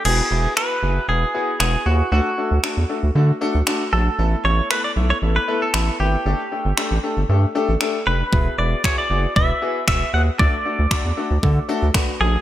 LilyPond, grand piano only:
\new Staff \with { instrumentName = "Grand piano" } { \time 4/4 \key e \mixolydian \tempo 4 = 116 <b e' fis' gis'>16 r16 <b e' fis' b'>16 r16 <b e' fis' b'>16 r16 <b e' fis' gis'>16 r16 <b e' fis' b'>16 r16 <b e' fis' gis'>16 r16 <b e' fis' gis'>16 r16 <b e' fis' gis'>16 r16 | <a d' fis' a'>16 r16 <a d' fis' a'>16 r16 <a d' fis' a'>16 r16 <a d' fis' a'>16 r16 <a d' fis' a'>16 r16 <a d' fis' a'>16 r16 <a d' fis' a'>16 r16 <a d' fis' a'>16 r16 | <a b e' a'>16 r16 <a b e' a'>16 r16 <a b e' a'>16 r16 <a b e' a'>16 r16 <a b e' a'>16 r16 <a b e' a'>16 r16 <a b e' b'>16 r16 <a b e' b'>16 r16 | <a d' g' a'>16 r16 <a d' g' a'>16 r16 <a d' g' a'>16 r16 <a d' g' a'>16 r16 <a d' g' a'>16 r16 <a d' g' a'>16 r16 <a d' g' a'>16 r16 <a d' g' b'>16 r16 |
<b e' fis' gis'>16 r16 <b e' fis' gis'>16 r16 <b e' fis' gis'>16 r16 <b e' fis' gis'>16 r16 <b e' fis' b'>16 r16 <b e' fis' gis'>16 r16 <b e' fis' gis'>16 r16 <b e' fis' gis'>16 r16 | <a d' fis' a'>16 r16 <a d' fis' a'>16 r16 <a d' fis' a'>16 r16 <a d' fis' a'>16 r16 <a d' fis' a'>16 r16 <a d' fis' a'>16 r16 <a d' fis' b'>16 r16 <a d' fis' a'>16 r16 | }